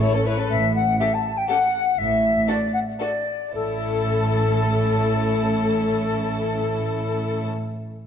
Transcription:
0.00 0.30 A1 medium
0.00 0.30 A2 medium
0.00 0.12 A3 soft
0.00 0.12 E4 soft
0.00 0.26 A4 soft
0.00 0.26 C#5 medium
0.00 0.13 C#5 soft
0.13 0.26 C#4 soft
0.13 0.26 A4 soft
0.26 0.38 A3 soft
0.26 0.38 E4 soft
0.26 0.50 B4 soft
0.26 0.38 C#5 soft
0.38 0.50 C#4 soft
0.38 0.51 A4 soft
0.51 0.91 A1 soft
0.51 0.91 A2 soft
0.51 0.73 E5 medium
0.76 0.99 F#5 soft
0.99 1.09 C#4 soft
0.99 1.09 G4 soft
0.99 1.09 A4 soft
0.99 1.11 E5 medium
1.13 1.37 A5 medium
1.37 1.49 G5 medium
1.49 1.58 C#4 soft
1.49 1.57 G4 soft
1.49 1.57 A4 soft
1.49 1.97 F#5 medium
1.97 2.39 A1 soft
1.97 2.39 A2 soft
1.97 2.48 E5 medium
2.48 2.56 D4 soft
2.48 2.57 F#4 soft
2.48 2.57 A4 soft
2.48 2.74 D5 soft
2.74 2.80 F#5 soft
3.00 3.08 D4 soft
3.00 3.09 F#4 soft
3.00 3.08 A4 soft
3.00 3.53 D5 soft
3.53 7.47 A1 soft
3.53 7.47 A2 soft
3.53 7.47 C#4 soft
3.53 7.48 E4 soft
3.53 7.47 A4 soft
3.53 7.48 A4 soft

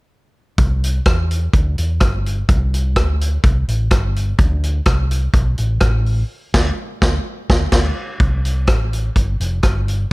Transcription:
0.58 0.99 C2 loud
0.58 kick loud
0.58 closed hi-hat medium
0.84 closed hi-hat medium
1.05 1.46 E2 medium
1.05 kick loud
1.05 cross-stick loud
1.05 closed hi-hat medium
1.31 closed hi-hat medium
1.53 1.75 D2 medium
1.53 kick loud
1.53 closed hi-hat medium
1.78 1.98 E2 medium
1.78 closed hi-hat medium
2.00 2.41 G1 medium
2.00 kick loud
2.00 cross-stick medium
2.00 closed hi-hat medium
2.26 closed hi-hat medium
2.49 2.96 C2 loud
2.49 kick loud
2.49 closed hi-hat medium
2.74 closed hi-hat loud
2.96 3.36 D2 medium
2.96 kick loud
2.96 cross-stick loud
2.96 closed hi-hat medium
3.21 closed hi-hat medium
3.44 3.65 C2 medium
3.44 kick loud
3.44 closed hi-hat medium
3.68 3.87 A1 medium
3.68 closed hi-hat medium
3.91 4.32 G1 medium
3.91 kick loud
3.91 cross-stick loud
3.91 closed hi-hat medium
4.16 closed hi-hat medium
4.38 4.79 D2 loud
4.38 kick loud
4.38 closed hi-hat medium
4.64 closed hi-hat medium
4.85 5.27 C2 medium
4.85 kick loud
4.85 cross-stick loud
4.85 closed hi-hat medium
5.11 closed hi-hat medium
5.33 5.55 B1 medium
5.33 kick loud
5.33 closed hi-hat medium
5.58 5.78 A1 medium
5.58 closed hi-hat medium
5.80 6.22 A1 loud
5.80 kick loud
5.80 cross-stick loud
5.80 closed hi-hat medium
6.06 open hi-hat soft
6.54 6.70 D2 loud
6.54 kick loud
6.54 snare loud
6.54 crash medium
7.02 7.17 D2 loud
7.02 kick loud
7.02 snare loud
7.50 7.65 D2 loud
7.50 kick loud
7.50 snare loud
7.72 7.89 D2 loud
7.72 kick medium
7.72 snare loud
7.72 crash medium
8.20 8.68 C2 loud
8.20 kick loud
8.20 closed hi-hat medium
8.45 closed hi-hat medium
8.67 9.08 A1 medium
8.67 kick loud
8.67 cross-stick loud
8.67 closed hi-hat medium
8.93 closed hi-hat medium
9.16 9.37 G1 medium
9.16 kick loud
9.16 closed hi-hat medium
9.40 9.60 F1 medium
9.40 closed hi-hat medium
9.63 10.04 G1 medium
9.63 kick loud
9.63 cross-stick medium
9.63 closed hi-hat medium
9.88 closed hi-hat medium

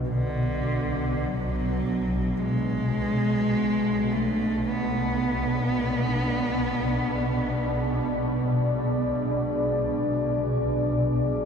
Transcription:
0.00 11.45 B1 medium
0.00 11.45 B2 medium
0.00 11.45 B3 medium
0.00 11.45 D4 medium
0.00 1.22 F#4 medium
0.00 4.56 C#5 medium
0.09 1.25 D3 medium
0.87 11.45 G#4 medium
1.23 2.40 F#3 medium
2.38 4.13 G#3 medium
4.12 4.71 A3 medium
4.20 11.45 D5 medium
4.69 8.13 B3 medium

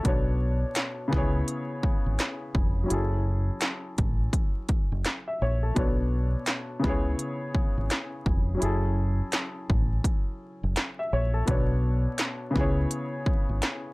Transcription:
0.03 0.63 B1 loud
0.03 1.11 B2 medium
0.03 1.09 B3 medium
0.03 1.12 D4 medium
0.03 1.13 A4 medium
0.03 kick loud
0.03 closed hi-hat medium
0.08 1.13 C#5 medium
0.75 snare loud
0.75 clap medium
0.75 closed hi-hat medium
1.08 2.85 C#3 medium
1.08 2.86 B3 medium
1.13 1.42 C#2 loud
1.13 2.87 E4 medium
1.13 2.89 G#4 medium
1.13 kick medium
1.13 snare soft
1.18 2.90 C#5 medium
1.48 closed hi-hat medium
1.83 kick medium
2.06 2.17 G#1 medium
2.19 snare loud
2.19 clap medium
2.19 closed hi-hat medium
2.55 2.84 F1 medium
2.55 kick loud
2.83 5.69 F#3 medium
2.83 5.70 C#4 medium
2.88 3.49 F#1 loud
2.88 5.71 E4 medium
2.88 5.01 G#4 medium
2.88 closed hi-hat medium
2.93 5.02 A4 medium
3.61 snare loud
3.61 clap medium
3.61 closed hi-hat medium
3.98 4.27 A1 medium
3.98 kick medium
3.98 closed hi-hat medium
4.33 kick medium
4.33 closed hi-hat medium
4.69 kick medium
4.69 closed hi-hat medium
4.92 5.03 F#1 medium
5.05 snare loud
5.05 clap medium
5.05 closed hi-hat medium
5.28 5.40 E5 medium
5.42 5.70 A#1 medium
5.42 5.62 C#5 medium
5.63 5.76 A4 medium
5.74 6.35 B1 loud
5.74 6.83 B2 medium
5.74 6.80 B3 medium
5.74 6.84 D4 medium
5.74 6.84 A4 medium
5.74 kick loud
5.74 closed hi-hat medium
5.79 6.85 C#5 medium
6.46 snare loud
6.46 clap medium
6.46 closed hi-hat medium
6.79 8.56 C#3 medium
6.79 8.58 B3 medium
6.84 7.13 C#2 loud
6.84 8.58 E4 medium
6.84 8.60 G#4 medium
6.84 kick medium
6.84 snare soft
6.89 8.61 C#5 medium
7.19 closed hi-hat medium
7.55 kick medium
7.77 7.88 G#1 medium
7.90 snare loud
7.90 clap medium
7.90 closed hi-hat medium
8.26 8.55 F1 medium
8.26 kick medium
8.55 11.40 F#3 medium
8.55 11.41 C#4 medium
8.60 9.20 F#1 loud
8.60 11.43 E4 medium
8.60 10.72 G#4 medium
8.60 closed hi-hat medium
8.65 10.74 A4 medium
9.32 snare loud
9.32 clap loud
9.32 closed hi-hat medium
9.70 9.99 A1 medium
9.70 kick medium
10.04 kick medium
10.04 closed hi-hat loud
10.63 10.74 F#1 medium
10.76 snare loud
10.76 clap medium
10.76 closed hi-hat medium
10.99 11.12 E5 medium
11.13 11.42 A#1 medium
11.13 11.34 C#5 medium
11.34 11.48 A4 medium
11.45 12.06 B1 loud
11.45 12.54 B2 medium
11.45 12.52 B3 medium
11.45 12.55 D4 medium
11.45 12.56 A4 medium
11.45 kick loud
11.45 closed hi-hat medium
11.51 12.56 C#5 medium
12.18 snare loud
12.18 clap medium
12.18 closed hi-hat medium
12.51 13.93 C#3 medium
12.51 13.93 B3 medium
12.56 12.85 C#2 loud
12.56 13.93 E4 medium
12.56 13.93 G#4 medium
12.56 kick medium
12.56 snare soft
12.61 13.93 C#5 medium
12.91 closed hi-hat medium
13.26 kick medium
13.49 13.60 G#1 medium
13.62 snare loud
13.62 clap medium
13.62 closed hi-hat medium

